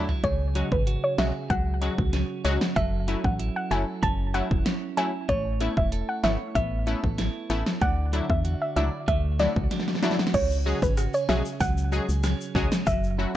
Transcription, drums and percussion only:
0.09 floor tom medium
0.24 kick loud
0.24 closed hi-hat medium
0.55 closed hi-hat medium
0.72 kick medium
0.87 closed hi-hat medium
1.18 snare loud
1.18 closed hi-hat soft
1.50 kick medium
1.50 closed hi-hat medium
1.82 closed hi-hat soft
1.98 kick medium
2.13 snare medium
2.13 closed hi-hat medium
2.45 closed hi-hat medium
2.61 snare loud
2.76 kick loud
2.76 closed hi-hat medium
3.08 closed hi-hat medium
3.24 kick loud
3.39 closed hi-hat medium
3.71 closed hi-hat soft
4.03 kick medium
4.03 closed hi-hat medium
4.34 closed hi-hat soft
4.51 kick medium
4.66 snare loud
4.66 closed hi-hat medium
4.97 closed hi-hat medium
5.29 kick loud
5.29 closed hi-hat medium
5.61 closed hi-hat medium
5.77 kick loud
5.92 closed hi-hat medium
6.24 snare loud
6.24 closed hi-hat soft
6.55 kick medium
6.55 closed hi-hat medium
6.87 closed hi-hat soft
7.04 kick medium
7.18 snare medium
7.18 closed hi-hat medium
7.50 closed hi-hat medium
7.66 snare loud
7.81 kick loud
7.81 closed hi-hat medium
8.13 closed hi-hat medium
8.30 kick medium
8.45 closed hi-hat medium
8.77 closed hi-hat medium
9.08 kick medium
9.08 closed hi-hat medium
9.39 snare medium
9.39 closed hi-hat soft
9.56 kick medium
9.71 snare medium
9.71 closed hi-hat medium
9.80 snare medium
9.88 snare medium
9.95 snare medium
10.03 snare medium
10.03 closed hi-hat medium
10.11 snare medium
10.19 snare loud
10.27 snare medium
10.34 kick loud
10.34 closed hi-hat medium
10.34 crash medium
10.34 shaker medium
10.51 shaker medium
10.82 kick loud
10.82 shaker medium
10.97 cross-stick medium
10.97 closed hi-hat medium
10.97 shaker medium
11.14 shaker soft
11.29 snare loud
11.45 shaker medium
11.60 kick loud
11.60 closed hi-hat medium
11.60 shaker medium
11.78 shaker medium
11.92 shaker soft
12.09 shaker medium
12.23 cross-stick medium
12.23 snare medium
12.23 closed hi-hat medium
12.23 shaker medium
12.41 shaker medium
12.55 kick medium
12.72 snare loud
12.72 shaker medium
12.87 kick loud
12.87 closed hi-hat medium
12.87 shaker medium
13.04 shaker medium

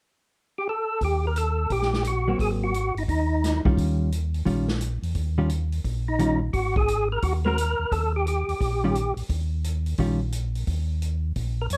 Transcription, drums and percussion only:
1.01 kick soft
1.01 open hi-hat soft
1.36 closed hi-hat soft
1.70 kick soft
1.70 open hi-hat soft
1.82 snare soft
1.93 snare soft
2.04 closed hi-hat soft
2.39 kick soft
2.39 open hi-hat soft
2.74 closed hi-hat soft
2.97 open hi-hat soft
3.08 kick soft
3.08 open hi-hat soft
3.44 snare soft
3.44 closed hi-hat soft
3.65 kick soft
3.77 kick soft
3.77 open hi-hat soft
4.12 closed hi-hat soft
4.34 open hi-hat soft
4.46 kick soft
4.46 open hi-hat soft
4.68 snare soft
4.81 closed hi-hat soft
5.03 open hi-hat soft
5.15 kick soft
5.15 open hi-hat soft
5.49 closed hi-hat soft
5.72 open hi-hat soft
5.84 kick soft
5.84 open hi-hat soft
6.19 closed hi-hat soft
6.53 kick soft
6.53 open hi-hat soft
6.76 kick soft
6.88 closed hi-hat soft
7.22 kick soft
7.22 open hi-hat soft
7.58 closed hi-hat soft
7.92 kick soft
7.92 open hi-hat soft
8.27 closed hi-hat soft
8.49 open hi-hat soft
8.61 kick soft
8.61 open hi-hat soft
8.95 closed hi-hat soft
9.17 open hi-hat soft
9.29 kick soft
9.29 open hi-hat soft
9.64 closed hi-hat soft
9.86 open hi-hat soft
9.98 kick soft
9.98 open hi-hat soft
10.32 closed hi-hat soft
10.55 open hi-hat soft
10.67 kick soft
10.67 open hi-hat soft
11.02 closed hi-hat soft
11.36 kick soft
11.36 open hi-hat soft
11.70 closed hi-hat soft

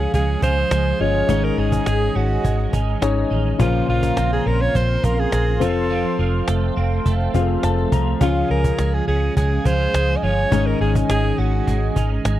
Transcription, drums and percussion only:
0.14 cajon bass medium
0.42 cajon bass medium
0.71 cajon slap loud
1.00 cajon slap soft
1.14 cajon slap soft
1.29 cajon bass medium
1.58 cajon slap soft
1.72 cajon bass medium
1.86 cajon slap loud
2.15 cajon slap soft
2.30 cajon slap soft
2.44 cajon bass medium
2.59 cajon slap soft
2.73 cajon bass medium
3.02 cajon slap loud
3.16 cajon slap soft
3.31 cajon slap soft
3.45 cajon slap soft
3.59 cajon bass loud
3.88 cajon slap soft
4.03 cajon bass medium
4.17 cajon slap loud
4.31 cajon slap soft
4.46 cajon slap soft
4.60 cajon slap soft
4.75 cajon bass medium
4.89 cajon slap soft
5.04 cajon bass medium
5.32 cajon slap loud
5.61 cajon bass medium
5.90 cajon slap soft
6.19 cajon slap soft
6.33 cajon slap soft
6.48 cajon slap loud
6.77 cajon slap soft
6.91 cajon slap soft
7.06 cajon bass medium
7.20 cajon slap soft
7.34 cajon bass medium
7.63 cajon slap loud
7.77 cajon slap soft
7.92 cajon bass medium
8.21 cajon bass loud
8.35 cajon slap soft
8.50 cajon slap soft
8.64 cajon bass medium
8.78 cajon slap loud
8.93 cajon slap soft
9.08 cajon slap soft
9.22 cajon slap soft
9.37 cajon bass medium
9.51 cajon slap soft
9.65 cajon bass medium
9.94 cajon slap loud
10.09 cajon slap soft
10.23 cajon slap soft
10.52 cajon bass loud
10.81 cajon slap soft
10.95 cajon bass medium
11.10 cajon slap loud
11.39 cajon slap soft
11.53 cajon slap soft
11.67 cajon bass medium
11.82 cajon slap soft
11.96 cajon bass medium
12.25 cajon slap loud

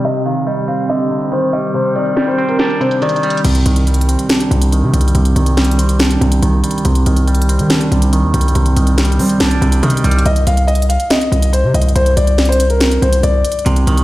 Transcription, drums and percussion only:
0.04 closed hi-hat medium
0.15 closed hi-hat medium
0.25 closed hi-hat medium
0.36 closed hi-hat medium
0.47 closed hi-hat soft
0.54 closed hi-hat medium
0.61 closed hi-hat medium
0.68 closed hi-hat medium
0.78 closed hi-hat medium
0.89 closed hi-hat medium
1.00 closed hi-hat medium
1.11 closed hi-hat medium
1.21 closed hi-hat medium
1.32 closed hi-hat medium
1.53 closed hi-hat medium
1.60 closed hi-hat medium
1.67 closed hi-hat soft
1.74 closed hi-hat medium
1.85 closed hi-hat medium
1.96 closed hi-hat medium
2.06 closed hi-hat medium
2.17 snare medium
2.17 closed hi-hat medium
2.24 closed hi-hat medium
2.31 closed hi-hat soft
2.38 closed hi-hat medium
2.49 closed hi-hat medium
2.59 snare loud
2.59 closed hi-hat medium
2.70 closed hi-hat medium
2.81 closed hi-hat medium
2.91 closed hi-hat medium
3.02 closed hi-hat medium
3.09 closed hi-hat medium
3.16 closed hi-hat medium
3.23 closed hi-hat medium
3.30 closed hi-hat medium
3.37 closed hi-hat medium
3.44 closed hi-hat medium
3.44 crash loud
3.55 closed hi-hat medium
3.66 closed hi-hat medium
3.76 closed hi-hat medium
3.87 closed hi-hat soft
3.94 closed hi-hat medium
4.01 closed hi-hat medium
4.09 closed hi-hat medium
4.19 closed hi-hat medium
4.29 snare loud
4.29 closed hi-hat medium
4.40 closed hi-hat medium
4.51 closed hi-hat medium
4.62 closed hi-hat medium
4.72 closed hi-hat medium
4.94 closed hi-hat medium
5.01 closed hi-hat medium
5.08 closed hi-hat soft
5.15 closed hi-hat medium
5.25 closed hi-hat medium
5.36 closed hi-hat medium
5.46 closed hi-hat medium
5.57 snare medium
5.57 closed hi-hat soft
5.64 closed hi-hat medium
5.71 closed hi-hat medium
5.79 closed hi-hat medium
5.89 closed hi-hat medium
6.00 snare loud
6.00 closed hi-hat medium
6.11 closed hi-hat medium
6.22 closed hi-hat medium
6.32 closed hi-hat medium
6.43 closed hi-hat medium
6.64 closed hi-hat medium
6.71 closed hi-hat medium
6.78 closed hi-hat soft
6.85 closed hi-hat medium
6.95 closed hi-hat medium
7.06 closed hi-hat medium
7.17 closed hi-hat medium
7.28 closed hi-hat soft
7.35 closed hi-hat medium
7.42 closed hi-hat medium
7.49 closed hi-hat loud
7.59 closed hi-hat medium
7.70 snare loud
7.70 closed hi-hat medium
7.81 closed hi-hat medium
7.92 closed hi-hat medium
8.02 closed hi-hat medium
8.13 closed hi-hat medium
8.34 closed hi-hat medium
8.41 closed hi-hat medium
8.48 closed hi-hat soft
8.55 closed hi-hat medium
8.66 closed hi-hat medium
8.77 closed hi-hat medium
8.87 closed hi-hat medium
8.98 snare medium
8.98 closed hi-hat medium
9.05 closed hi-hat medium
9.12 closed hi-hat soft
9.19 open hi-hat medium
9.29 closed hi-hat medium
9.40 snare loud
9.40 closed hi-hat medium
9.51 closed hi-hat medium
9.62 closed hi-hat medium
9.72 closed hi-hat medium
9.83 closed hi-hat medium
9.90 closed hi-hat medium
9.97 closed hi-hat medium
10.04 closed hi-hat medium
10.11 closed hi-hat medium
10.19 closed hi-hat medium
10.26 closed hi-hat medium
10.36 closed hi-hat medium
10.47 closed hi-hat medium
10.57 closed hi-hat medium
10.68 closed hi-hat soft
10.75 closed hi-hat medium
10.82 closed hi-hat medium
10.90 closed hi-hat medium
11.00 closed hi-hat medium
11.10 snare loud
11.10 closed hi-hat medium
11.21 closed hi-hat medium
11.32 closed hi-hat medium
11.42 closed hi-hat medium
11.53 closed hi-hat medium
11.74 closed hi-hat medium
11.82 closed hi-hat medium
11.89 closed hi-hat soft
11.96 closed hi-hat medium
12.06 closed hi-hat medium
12.17 closed hi-hat medium
12.27 closed hi-hat medium
12.38 snare medium
12.38 closed hi-hat soft
12.45 closed hi-hat medium
12.52 closed hi-hat medium
12.60 closed hi-hat loud
12.70 closed hi-hat medium
12.80 snare loud
12.80 closed hi-hat medium
12.91 closed hi-hat medium
13.02 closed hi-hat medium
13.13 closed hi-hat medium
13.23 closed hi-hat medium
13.45 closed hi-hat medium
13.52 closed hi-hat medium
13.59 closed hi-hat soft
13.66 closed hi-hat medium
13.76 closed hi-hat medium
13.87 closed hi-hat medium
13.97 closed hi-hat medium

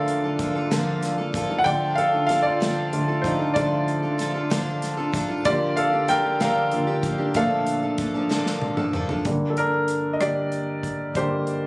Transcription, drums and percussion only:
0.08 closed hi-hat medium
0.39 kick medium
0.39 closed hi-hat medium
0.71 snare loud
0.71 closed hi-hat medium
1.03 snare soft
1.03 closed hi-hat medium
1.34 kick medium
1.34 closed hi-hat medium
1.66 kick loud
1.66 closed hi-hat medium
1.98 closed hi-hat medium
2.29 snare soft
2.29 closed hi-hat medium
2.62 snare loud
2.62 closed hi-hat medium
2.93 closed hi-hat medium
3.24 kick medium
3.24 closed hi-hat medium
3.56 kick loud
3.56 closed hi-hat medium
3.88 closed hi-hat soft
4.19 snare soft
4.19 closed hi-hat medium
4.51 snare loud
4.51 closed hi-hat medium
4.82 snare soft
4.82 closed hi-hat medium
5.14 kick medium
5.14 closed hi-hat medium
5.45 kick loud
5.45 closed hi-hat medium
5.77 closed hi-hat medium
6.08 snare soft
6.08 closed hi-hat medium
6.41 snare loud
6.41 closed hi-hat medium
6.71 closed hi-hat medium
7.03 kick medium
7.03 closed hi-hat medium
7.34 kick medium
7.34 closed hi-hat medium
7.66 closed hi-hat soft
7.98 kick medium
7.98 closed hi-hat medium
8.31 snare medium
8.46 snare medium
8.62 high tom medium
8.77 mid tom medium
8.93 mid tom medium
9.09 floor tom medium
9.25 kick medium
9.25 closed hi-hat medium
9.57 closed hi-hat soft
9.88 cross-stick soft
9.88 closed hi-hat medium
10.21 cross-stick medium
10.21 closed hi-hat medium
10.52 closed hi-hat soft
10.83 kick medium
10.83 closed hi-hat medium
11.15 kick medium
11.15 closed hi-hat medium
11.47 closed hi-hat soft

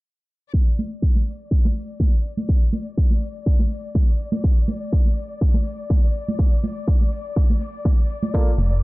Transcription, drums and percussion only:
0.54 kick loud
0.54 tambourine soft
0.78 open hi-hat loud
0.78 tambourine medium
0.78 high conga medium
0.91 tambourine soft
1.02 kick loud
1.02 tambourine soft
1.15 high conga medium
1.27 open hi-hat medium
1.39 tambourine soft
1.51 kick loud
1.65 high conga medium
1.75 open hi-hat loud
1.75 tambourine medium
1.89 tambourine soft
1.99 kick loud
1.99 tambourine soft
1.99 high conga medium
2.24 open hi-hat medium
2.24 tambourine medium
2.37 tambourine soft
2.37 high conga medium
2.48 kick loud
2.48 tambourine soft
2.73 open hi-hat loud
2.73 tambourine medium
2.73 high conga medium
2.86 tambourine soft
2.98 kick loud
2.98 tambourine soft
3.11 high conga medium
3.22 open hi-hat loud
3.22 tambourine medium
3.35 tambourine soft
3.46 kick loud
3.59 high conga medium
3.71 open hi-hat loud
3.71 tambourine medium
3.84 tambourine medium
3.94 kick loud
3.94 tambourine soft
3.94 high conga medium
4.20 open hi-hat medium
4.20 tambourine medium
4.32 tambourine soft
4.32 high conga medium
4.44 kick loud
4.44 tambourine soft
4.68 open hi-hat loud
4.68 tambourine medium
4.68 high conga medium
4.81 tambourine soft
4.93 kick loud
5.06 high conga medium
5.17 open hi-hat loud
5.17 tambourine medium
5.30 tambourine soft
5.41 kick loud
5.54 high conga medium
5.66 open hi-hat loud
5.66 tambourine medium
5.78 tambourine soft
5.90 kick loud
5.90 tambourine soft
5.90 high conga medium
6.14 open hi-hat loud
6.14 tambourine medium
6.28 tambourine soft
6.28 high conga medium
6.39 kick loud
6.39 tambourine soft
6.63 open hi-hat loud
6.63 tambourine medium
6.63 high conga medium
6.76 tambourine soft
6.88 kick loud
6.88 tambourine soft
7.01 high conga medium
7.12 open hi-hat loud
7.12 tambourine medium
7.25 tambourine soft
7.36 kick loud
7.50 high conga medium
7.61 open hi-hat loud
7.61 tambourine medium
7.74 tambourine soft
7.85 kick loud
7.85 tambourine soft
7.85 high conga medium
8.10 open hi-hat loud
8.10 tambourine medium
8.23 tambourine medium
8.23 high conga medium
8.34 kick loud
8.34 tambourine soft
8.58 open hi-hat loud
8.58 tambourine medium
8.58 high conga medium
8.72 tambourine soft

